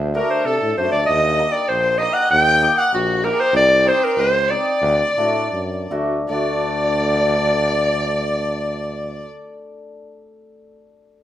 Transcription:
Already playing: D2
0.15 A3 D4 F#4 A#4
0.30 C5
0.45 C3 A4
0.62 A2
0.77 F#2 A3 D4 F#4 C5
0.91 D2 D5
0.95 D5
1.06 D#2 D#5
1.10 D#5
1.39 A#3 D#4 G4
1.52 D5
1.56 D5
1.68 A#1 C5
1.98 A#3 D#4 G4 D#5
2.02 D#5
2.14 F#5
2.31 D#2 G5
2.62 A#3 D#4 G4
2.78 F#5
2.93 A#1 F#4
3.24 A#3 D#4 G4 A#4
3.40 C5
3.53 C2 D5
3.85 C4 D#4 G4 C5
4.04 A#4
4.15 C#2 C5
4.20 C5
4.48 C4 D#4 G4 D5
4.82 D2
5.16 A2 A3 D4 F#4
5.52 F#2
5.90 D2 A3 D4 F#4
6.29 D2 A3 D4 D5
6.33 F#4

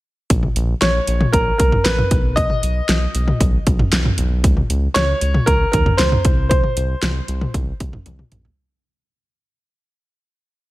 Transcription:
0.30 A#1, kick, closed hi-hat
0.43 mid tom
0.56 A#1, closed hi-hat
0.81 A#1 C#5, snare, closed hi-hat
1.07 A#1, closed hi-hat
1.21 mid tom
1.32 A#1 A#4, kick, closed hi-hat
1.58 C2 A#4, kick, closed hi-hat
1.72 mid tom
1.84 A#1 B4, snare, closed hi-hat
1.98 mid tom
2.11 B1, kick, closed hi-hat
2.36 D#5, kick, closed hi-hat
2.50 mid tom
2.63 B1, closed hi-hat
2.89 B1, snare, closed hi-hat
3.15 B1, closed hi-hat
3.28 mid tom
3.41 B1, kick, closed hi-hat
3.67 B1, kick, closed hi-hat
3.79 mid tom
3.92 B1, snare, closed hi-hat
4.05 mid tom
4.18 B1, closed hi-hat
4.44 C#2, kick, closed hi-hat
4.57 mid tom
4.70 C#2, closed hi-hat
4.94 C#2 C#5, snare, closed hi-hat
5.21 C#2, closed hi-hat
5.34 mid tom
5.46 C#2 A#4, kick, closed hi-hat
5.72 D#2 A#4, kick, closed hi-hat
5.86 mid tom
5.97 C#2 C5, snare, closed hi-hat
6.12 mid tom
6.25 C2, kick, closed hi-hat
6.49 C5, kick, closed hi-hat
6.64 mid tom
6.77 C2, closed hi-hat
7.02 C2, snare, closed hi-hat
7.28 C2, closed hi-hat
7.41 mid tom
7.54 C2, kick, closed hi-hat
7.80 C2, kick, closed hi-hat
7.93 mid tom
8.06 C2, closed hi-hat, high tom
8.19 mid tom
8.32 A#1, closed hi-hat, mid tom
8.45 floor tom

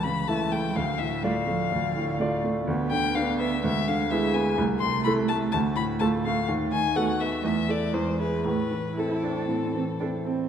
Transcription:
Already playing: C#2 E3
0.03 C#3 B5
0.27 E3 A3 E4 E5 A5
0.51 A3 G5
0.75 D2 A3 F5
0.98 A2 E5
1.23 G3 A3 F4 D5 F5
1.47 F3 A3
1.72 D2 D3
1.96 A2
2.19 A3 F4 D5
2.44 A3
2.67 D2 B3
2.90 D3 G5
3.15 B3 D4 B4 F5
3.39 B3 E5
3.63 D2 G#3 E5
3.88 D3 F5
4.11 G#3 B3 E4 G#4 E5
4.33 B3 G#5
4.58 C2 A3
4.80 C3 C6
5.05 A3 E4 A4 B5
5.28 A3 A5
5.52 D2 A3 A5
5.76 A2 B5
5.99 A3 F4 A4 A5
6.25 A3 F5
6.47 D#2 A3
6.72 D#3 G#5
6.95 A3 B3 F#4 A4 F#5
7.20 B3 E5
7.44 E2 A3 E5
7.68 E4 A4 D5
7.93 E2 G#3 C5
8.19 E4 G#4 B4
8.45 A2 A3 B4
8.71 E3
8.96 C4 E4 A4
9.24 C4 D4
9.49 A2 C4
9.75 E3 C4
10.00 C4 D4 E4 A4
10.24 C4

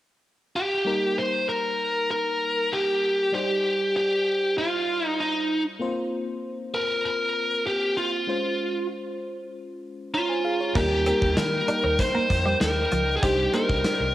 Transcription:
0.56 G4
0.85 G3 A#3 D#4 A#4
1.18 C5
1.49 A#4
2.11 A#4
2.73 G4
3.32 G3 D#4 G4 C5 D5
3.96 G4
4.58 F4
5.06 D#4
5.20 D#4
5.79 A#3 C4 F4 C5
6.74 A#4
7.05 A#4
7.67 G4
7.97 F4
8.27 G#3 C#4 F4 C5
10.14 F4 C#5 A#5
10.29 C5 G#5
10.45 G#4 F5
10.60 F4 C#5
10.75 D#2 D#3 G3 A#3 D#4 G4 A#4 G5, kick, crash
11.06 G3 A#3 C4 D#4 A#4, closed hi-hat
11.22 D#2, muted clean electric guitar stroke, kick
11.37 D#3 A#4, muted clean electric guitar stroke, snare, closed hi-hat
11.68 G3 A#3 D4 D#4 A#4, closed hi-hat
11.84 D#2 C4
11.99 C5, kick, closed hi-hat
12.15 A#3
12.30 F2, muted clean electric guitar stroke, kick, closed hi-hat
12.46 G3
12.61 D#2 A#4, snare, closed hi-hat
12.92 C#2 F3, closed hi-hat
13.17 G#4
13.22 C2 G3 C4 D4 D#4 G4 C5 D5, kick, closed hi-hat
13.53 G3 A#3 D4 D#4 A#4 C5, closed hi-hat
13.69 C2, muted clean electric guitar stroke, kick
13.84 muted clean electric guitar stroke, snare, closed hi-hat
14.00 C2

